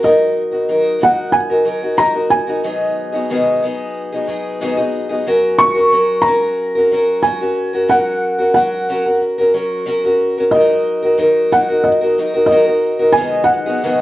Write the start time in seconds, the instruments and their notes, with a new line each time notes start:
0.03 steel-string acoustic guitar F#3 D#4 F#4 A#4, felt piano D#5
0.51 steel-string acoustic guitar D#4 F#4 A#4
0.69 steel-string acoustic guitar F#3 D#4 F#4 A#4
0.99 steel-string acoustic guitar F#3 D#4 F#4 A#4, felt piano F#5
1.32 felt piano G#5
1.50 steel-string acoustic guitar D#4 F#4 A#4
1.65 steel-string acoustic guitar F#3 D#4 F#4 A#4
1.81 steel-string acoustic guitar D#4 F#4 A#4
1.97 steel-string acoustic guitar F#3 D#4 F#4 A#4, felt piano A#5
2.14 steel-string acoustic guitar D#4 F#4 A#4
2.30 felt piano G#5
2.47 steel-string acoustic guitar D#4 F#4 A#4
2.63 steel-string acoustic guitar G#2 D#3 F#3 B3 D#4 G#4
3.12 steel-string acoustic guitar F#3 B3 D#4 G#4
3.30 steel-string acoustic guitar G#2 D#3 F#3 B3 D#4 G#4
3.62 steel-string acoustic guitar F#3 B3 D#4 G#4
4.12 steel-string acoustic guitar F#3 B3 D#4 G#4
4.27 steel-string acoustic guitar F#3 B3 D#4 G#4
4.61 steel-string acoustic guitar G#2 D#3 F#3 B3 D#4 G#4
4.77 steel-string acoustic guitar F#3 B3 D#4 G#4
5.09 steel-string acoustic guitar F#3 B3 D#4 G#4
5.26 steel-string acoustic guitar F#3 C#4 F#4 A#4
5.58 felt piano C#6
5.75 steel-string acoustic guitar C#4 F#4 A#4
5.92 steel-string acoustic guitar F#3 C#4 F#4 A#4
6.22 felt piano A#5
6.26 steel-string acoustic guitar F#3 C#4 F#4 A#4
6.75 steel-string acoustic guitar C#4 F#4 A#4
6.91 steel-string acoustic guitar F#3 C#4 F#4 A#4
7.23 steel-string acoustic guitar F#3 C#4 F#4 A#4, felt piano G#5
7.40 steel-string acoustic guitar C#4 F#4 A#4
7.73 steel-string acoustic guitar C#4 F#4 A#4
7.89 steel-string acoustic guitar F#3 C#4 F#4 A#4, felt piano F#5
8.39 steel-string acoustic guitar C#4 F#4 A#4
8.54 steel-string acoustic guitar F#3 C#4 F#4 A#4, felt piano F#5
8.89 steel-string acoustic guitar F#3 C#4 F#4 A#4
9.05 steel-string acoustic guitar C#4 F#4 A#4
9.38 steel-string acoustic guitar C#4 F#4 A#4
9.54 steel-string acoustic guitar F#3 C#4 F#4 A#4
9.86 steel-string acoustic guitar F#3 C#4 F#4 A#4
10.04 steel-string acoustic guitar C#4 F#4 A#4
10.37 steel-string acoustic guitar C#4 F#4 A#4
10.51 steel-string acoustic guitar F#3 D#4 A#4, felt piano D#5
10.55 steel-string acoustic guitar F#4
11.03 steel-string acoustic guitar D#4 F#4 A#4
11.18 steel-string acoustic guitar F#3 D#4 F#4 A#4
11.52 steel-string acoustic guitar F#3 D#4 F#4 A#4, felt piano F#5
11.69 steel-string acoustic guitar D#4 F#4 A#4
11.84 felt piano D#5
12.01 steel-string acoustic guitar D#4 F#4 A#4
12.18 steel-string acoustic guitar F#3 D#4 F#4 A#4
12.34 steel-string acoustic guitar D#4 F#4 A#4
12.46 felt piano D#5
12.51 steel-string acoustic guitar F#3 D#4 F#4 A#4
12.66 steel-string acoustic guitar D#4 F#4 A#4
12.99 steel-string acoustic guitar D#4 F#4 A#4
13.12 steel-string acoustic guitar G#2 F#3, felt piano G#5
13.16 steel-string acoustic guitar D#3 B3 D#4 G#4
13.44 felt piano F#5
13.66 steel-string acoustic guitar F#3 B3 D#4 G#4
13.83 steel-string acoustic guitar G#2 D#3 F#3 B3 D#4 G#4